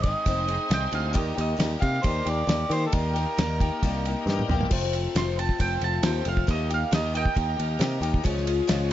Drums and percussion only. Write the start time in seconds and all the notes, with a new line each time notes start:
0.03 kick, ride
0.26 kick, ride
0.48 ride
0.71 snare, ride
0.92 ride
1.15 kick, ride
1.38 ride
1.60 snare, ride
1.82 kick, ride
2.04 kick, ride
2.27 ride
2.49 snare, ride
2.71 ride
2.93 kick, ride
3.16 ride
3.38 snare, ride
3.60 kick, ride
3.83 kick, ride
4.05 ride
4.28 snare
4.39 high tom
4.49 mid tom
4.61 floor tom
4.71 kick, crash
4.83 snare
4.93 ride
5.16 snare, ride
5.39 ride
5.49 kick
5.60 kick, ride
5.81 ride
6.03 snare, ride
6.25 ride
6.37 kick
6.48 kick, ride
6.70 ride
6.92 snare, ride
7.15 ride
7.25 kick
7.36 kick, ride
7.59 ride
7.81 snare, ride
8.03 ride
8.14 kick
8.25 kick, ride
8.38 snare
8.47 ride
8.69 snare, ride